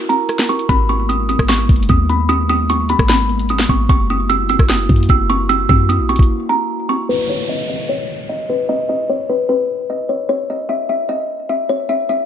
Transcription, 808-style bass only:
0.69 1.37 G#1 loud
1.39 1.68 G#1 loud
1.69 1.89 F#1 loud
1.89 2.95 D#2 loud
2.99 3.66 G#1 loud
3.69 3.89 G#1 loud
3.89 4.57 F#1 loud
4.59 4.88 F#1 loud
4.89 5.09 F#2 loud
5.09 5.67 F#1 loud
5.69 6.01 F#2 loud
5.99 6.18 A#1 loud
6.19 6.29 F#1 loud

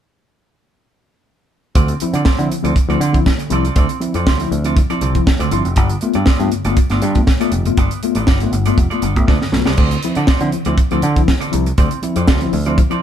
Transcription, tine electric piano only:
1.76 1.89 D3 medium
1.90 1.94 C4 soft
1.90 1.94 E4 soft
2.02 2.15 F3 medium
2.02 2.15 C4 medium
2.02 2.15 E4 medium
2.39 2.52 F3 medium
2.39 2.52 C4 medium
2.39 2.52 E4 medium
2.50 2.64 D3 soft
2.63 2.76 F3 medium
2.63 2.76 C4 medium
2.63 2.76 E4 medium
2.88 3.01 F3 medium
2.88 3.01 C4 soft
2.88 3.01 E4 medium
3.00 3.14 D3 medium
3.13 3.26 F3 medium
3.13 3.24 C4 medium
3.13 3.23 E4 medium
3.25 3.31 C4 soft
3.25 3.31 E4 soft
3.39 3.51 D3 medium
3.50 3.64 F3 medium
3.50 3.64 C4 medium
3.50 3.64 E4 medium
3.75 3.90 D3 medium
3.89 3.94 C4 soft
3.89 3.94 E4 soft
4.00 4.15 F3 medium
4.00 4.15 C4 medium
4.00 4.15 E4 medium
4.39 4.52 F3 medium
4.39 4.52 C4 medium
4.39 4.52 E4 medium
4.51 4.65 D3 medium
4.64 4.77 F3 medium
4.64 4.77 C4 medium
4.64 4.77 E4 medium
4.90 5.02 F3 medium
4.90 5.02 C4 medium
4.90 5.03 E4 medium
5.02 5.16 D3 soft
5.15 5.28 F3 medium
5.15 5.26 C4 medium
5.15 5.25 E4 medium
5.26 5.32 C4 soft
5.26 5.32 E4 soft
5.40 5.52 D3 medium
5.51 5.66 F3 medium
5.51 5.66 C4 medium
5.51 5.66 E4 medium
5.77 5.91 G2 medium
5.77 5.91 D3 medium
5.91 5.95 B3 soft
5.91 5.95 F4 soft
6.02 6.16 A3 medium
6.02 6.16 B3 medium
6.02 6.16 F4 medium
6.40 6.53 A3 medium
6.40 6.53 B3 medium
6.40 6.53 F4 medium
6.53 6.67 G2 soft
6.53 6.67 D3 soft
6.65 6.78 A3 medium
6.65 6.78 B3 medium
6.65 6.78 F4 medium
6.90 7.03 A3 medium
6.90 7.03 B3 medium
6.90 7.03 F4 medium
7.02 7.17 G2 soft
7.02 7.16 D3 medium
7.15 7.28 A3 medium
7.15 7.28 B3 medium
7.15 7.28 F4 medium
7.40 7.53 A3 medium
7.40 7.53 B3 medium
7.40 7.53 F4 medium
7.53 7.67 G2 soft
7.53 7.67 D3 soft
7.66 7.79 A3 medium
7.66 7.79 B3 medium
7.66 7.79 F4 medium
7.78 7.92 G2 medium
7.78 7.92 D3 soft
7.92 7.96 B3 soft
7.92 7.96 F4 soft
8.03 8.17 A3 medium
8.03 8.17 B3 medium
8.03 8.17 F4 medium
8.43 8.54 A3 medium
8.43 8.54 B3 medium
8.43 8.54 F4 medium
8.54 8.67 G2 soft
8.54 8.67 D3 medium
8.67 8.79 A3 medium
8.67 8.79 B3 medium
8.67 8.79 F4 medium
8.92 9.04 A3 medium
8.92 9.04 B3 soft
8.92 9.04 F4 medium
9.04 9.17 G2 medium
9.04 9.17 D3 medium
9.16 9.29 A3 medium
9.16 9.28 B3 medium
9.16 9.29 F4 medium
9.29 9.34 B3 soft
9.29 9.34 F4 soft
9.43 9.54 G2 soft
9.43 9.54 D3 medium
9.54 9.67 A3 medium
9.54 9.67 B3 medium
9.54 9.67 F4 medium
9.80 9.93 D3 medium
9.93 9.97 C4 soft
9.93 9.97 E4 soft
10.04 10.18 F3 medium
10.04 10.18 C4 medium
10.04 10.18 E4 medium
10.41 10.54 F3 medium
10.41 10.54 C4 medium
10.41 10.54 E4 medium
10.53 10.67 D3 medium
10.66 10.78 F3 medium
10.66 10.79 C4 medium
10.66 10.79 E4 medium
10.91 11.03 F3 medium
10.91 11.04 C4 medium
10.91 11.04 E4 medium
11.04 11.17 D3 medium
11.16 11.29 F3 medium
11.16 11.28 C4 medium
11.16 11.27 E4 medium
11.29 11.34 C4 soft
11.29 11.34 E4 soft
11.41 11.53 D3 medium
11.52 11.66 F3 medium
11.52 11.66 C4 medium
11.52 11.66 E4 medium
11.77 11.91 D3 medium
11.90 11.95 C4 soft
11.90 11.96 E4 soft
12.02 12.16 F3 medium
12.02 12.17 C4 medium
12.02 12.17 E4 medium
12.41 12.54 F3 medium
12.41 12.54 C4 medium
12.41 12.54 E4 medium
12.53 12.67 D3 medium
12.66 12.78 F3 medium
12.66 12.79 C4 medium
12.66 12.79 E4 medium
12.90 13.02 F3 medium
12.90 13.02 C4 medium
12.90 13.02 E4 medium

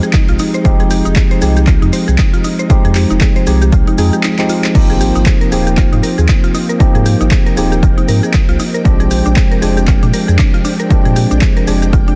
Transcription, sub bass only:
0.28 0.37 A#1 medium
0.65 1.01 F1 loud
1.05 1.14 F1 medium
1.42 1.78 C2 medium
1.82 1.91 F2 medium
2.08 2.17 C2 medium
2.85 3.05 F2 loud
3.10 3.19 F1 loud
3.47 3.83 C2 medium
3.98 4.10 F2 medium
4.75 5.11 G#1 loud
5.16 5.24 G#1 loud
5.52 5.88 D#1 medium
5.92 6.01 G#2 medium
6.18 6.27 D#2 medium
6.95 7.16 G#2 loud
7.21 7.30 G#1 loud
7.57 7.94 D#1 medium
8.08 8.21 G#2 medium
8.49 8.58 C2 medium
8.85 9.22 A#1 loud
9.26 9.35 A#1 loud
9.62 9.99 F1 medium
10.03 10.12 A#2 medium
10.28 10.37 F2 medium
11.05 11.26 A#2 loud
11.31 11.40 A#1 loud
11.67 12.04 F1 medium

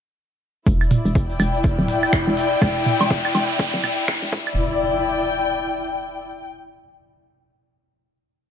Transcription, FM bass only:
0.67 0.97 E1 loud
1.05 1.34 E1 medium
1.40 1.70 E1 medium
1.79 2.07 D1 loud
2.27 2.56 E1 medium
2.62 2.92 E1 loud
3.01 3.29 E1 medium
3.35 3.65 E1 medium
3.74 4.02 D1 loud
4.23 4.32 E1 medium
4.32 4.55 E1 medium

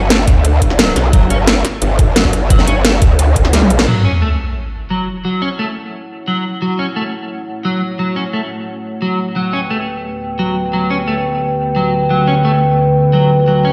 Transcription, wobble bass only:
0.00 0.26 G1 loud
0.28 0.60 D2 loud
0.62 0.95 G1 medium
0.96 1.12 B1 loud
1.13 1.29 G1 loud
1.30 1.63 G1 loud
1.82 2.66 G1 medium
2.68 3.00 G1 loud
3.02 3.86 D2 medium

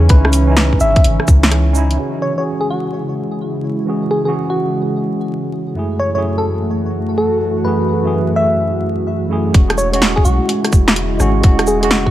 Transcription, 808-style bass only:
0.10 0.80 C#2 loud
0.81 0.95 G#1 loud
1.05 1.19 G#1 medium
1.28 1.98 C#2 medium
9.55 10.24 E1 loud
10.26 10.40 B1 loud
10.73 11.19 E1 loud
11.20 11.42 G#1 medium
11.44 12.11 E1 loud

